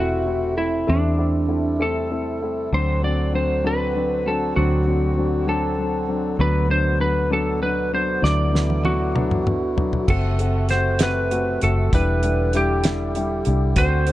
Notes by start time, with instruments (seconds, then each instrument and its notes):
Already playing: fingered electric bass E1, harmonium C3 A3 E4, upright piano A3 C4 E4
0.00 lead electric guitar F#4
0.26 upright piano A3 C4 E4
0.57 upright piano A3 C4 E4, lead electric guitar E4
0.87 fingered electric bass E2, harmonium G3, upright piano A3 C4 E4, lead electric guitar D4
1.18 upright piano A3 C4 E4
1.48 upright piano A3 C4 E4
1.79 upright piano A3 C4 E4, lead electric guitar A4
2.10 upright piano A3 C4 E4
2.42 upright piano A3 C4 E4
2.72 fingered electric bass D2, harmonium D3 C4 F#4, upright piano F#3 C4 D4, lead electric guitar C5
3.03 upright piano F#3 C4 D4, lead electric guitar D5
3.33 upright piano F#3 C4 D4, lead electric guitar C5
3.64 upright piano F#3 C4 D4, lead electric guitar B4
3.95 upright piano F#3 C4 D4
4.26 upright piano F#3 C4 D4, lead electric guitar A4
4.56 fingered electric bass D2, upright piano F#3 C4 D4, lead electric guitar F#4
4.87 upright piano F#3 C4 D4
5.17 upright piano F#3 C4 D4
5.47 upright piano F#3 C4 D4, lead electric guitar A4
5.78 upright piano F#3 C4 D4
6.08 upright piano F#3 C4 D4
6.39 fingered electric bass D2, harmonium B2, upright piano F#3 B3 D4, lead electric guitar B4
6.68 upright piano F#3 B3 D4, lead electric guitar C5
6.99 upright piano F#3 B3 D4, lead electric guitar B4
7.30 upright piano F#3 B3 D4, lead electric guitar A4
7.61 upright piano F#3 B3 D4, lead electric guitar B4
7.93 upright piano F#3 B3 D4, lead electric guitar C5
8.22 fingered electric bass D2, upright piano F#3 B3 D4, harmonium E4, lead electric guitar D5, snare
8.53 upright piano F#3 B3 D4, snare
8.70 high tom
8.84 upright piano F#3 B3 D4, lead electric guitar F#4, high tom
9.15 upright piano F#3 B3 D4, mid tom
9.31 mid tom
9.46 upright piano B3 D4, mid tom
9.77 upright piano F#3 B3 D4, floor tom
9.93 floor tom
10.07 fingered electric bass F#1, harmonium C3 A3 F#4, upright piano A3 C4 F#4, lead electric guitar A4, kick, crash
10.39 upright piano A3 C4 F#4, closed hi-hat
10.69 upright piano A3 C4 F#4, lead electric guitar C5, snare, closed hi-hat
10.99 upright piano A3 C4 F#4, lead electric guitar B4, snare, closed hi-hat
11.31 upright piano A3 C4 F#4, closed hi-hat
11.61 fingered electric bass F#1, upright piano A3 C4 F#4, lead electric guitar A4, closed hi-hat
11.92 fingered electric bass E1, harmonium D3 G3 E4, upright piano G3 D4 E4, lead electric guitar B4, kick, closed hi-hat
12.23 upright piano G3 D4 E4, closed hi-hat
12.53 upright piano G3 D4 E4, lead electric guitar G4, closed hi-hat
12.84 upright piano G3 D4 E4, snare, closed hi-hat
13.15 upright piano G3 D4 E4, closed hi-hat
13.45 fingered electric bass C2, upright piano G3 D4 E4, closed hi-hat
13.76 fingered electric bass D2, harmonium C4 F#4, upright piano C4 D4 F#4, lead electric guitar C5, kick, closed hi-hat
14.07 upright piano C4 D4 F#4, closed hi-hat